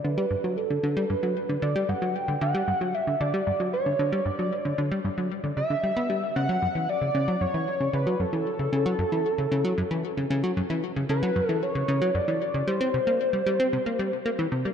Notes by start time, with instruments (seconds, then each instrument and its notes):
0.04 analog synth bass D3, analog synth lead B4
0.18 analog synth bass G3
0.31 analog synth bass G2
0.44 analog synth bass F#3
0.57 analog synth lead A4
0.70 analog synth bass D3
0.83 analog synth bass D3
0.97 analog synth bass G3
1.10 analog synth bass G2, analog synth lead B4
1.23 analog synth bass F#3
1.49 analog synth bass D3
1.62 analog synth bass D3, analog synth lead D5
1.76 analog synth bass G3
1.89 analog synth bass G2, analog synth lead F#5
2.02 analog synth bass F#3
2.15 analog synth lead G5
2.28 analog synth bass D3
2.41 analog synth bass D3, analog synth lead F#5
2.55 analog synth bass G3
2.68 analog synth bass G2
2.81 analog synth bass F#3
2.94 analog synth lead E5
3.07 analog synth bass D3
3.21 analog synth bass D3, analog synth lead D5
3.34 analog synth bass G3
3.47 analog synth bass G2
3.60 analog synth bass F#3
3.73 analog synth lead C#5
3.86 analog synth bass D3
3.99 analog synth bass D3
4.12 analog synth bass G3
4.26 analog synth bass G2, analog synth lead D5
4.39 analog synth bass F#3
4.65 analog synth bass D3
4.78 analog synth bass D3
4.92 analog synth bass G3
5.04 analog synth bass G2
5.18 analog synth bass F#3
5.44 analog synth bass D3
5.57 analog synth bass C#3, analog synth lead E5
5.70 analog synth bass D3
5.84 analog synth bass G3
5.97 analog synth bass B3
6.10 analog synth bass G3
6.36 analog synth bass C#3, analog synth lead F#5
6.49 analog synth bass F#3
6.62 analog synth bass F#2
6.75 analog synth bass E3
6.89 analog synth lead D5
7.02 analog synth bass C#3
7.15 analog synth bass C#3
7.28 analog synth bass F#3
7.41 analog synth bass F#2, analog synth lead C#5
7.54 analog synth bass E3
7.80 analog synth bass C#3
7.93 analog synth bass C#3, analog synth lead B4
8.07 analog synth bass F#3
8.20 analog synth bass F#2, analog synth lead A4
8.33 analog synth bass E3
8.59 analog synth bass C#3
8.73 analog synth bass C#3
8.86 analog synth bass F#3
8.99 analog synth bass F#2
9.12 analog synth bass E3
9.38 analog synth bass C#3
9.52 analog synth bass C#3
9.64 analog synth bass F#3
9.78 analog synth bass F#2
9.91 analog synth bass E3
10.17 analog synth bass C#3
10.30 analog synth bass C#3
10.43 analog synth bass F#3
10.57 analog synth bass F#2
10.70 analog synth bass E3
10.96 analog synth bass C#3
11.09 analog synth bass C#3, analog synth lead B4
11.23 analog synth bass F#3
11.36 analog synth bass F#2
11.49 analog synth bass E3, analog synth lead A4
11.63 analog synth lead C#5
11.75 analog synth bass C#3
11.88 analog synth bass C#3
12.02 analog synth bass F#3
12.15 analog synth bass F#2, analog synth lead D5
12.28 analog synth bass E3
12.54 analog synth bass C#3
12.67 analog synth bass G3, analog synth lead C5
12.81 analog synth bass C4
12.94 analog synth bass C3
13.07 analog synth bass A#3
13.33 analog synth bass G3
13.46 analog synth bass G3
13.60 analog synth bass C4
13.73 analog synth bass C3
13.86 analog synth bass A#3
13.99 analog synth bass G3
14.26 analog synth bass A#3
14.39 analog synth bass E3
14.52 analog synth bass C3
14.65 analog synth bass G3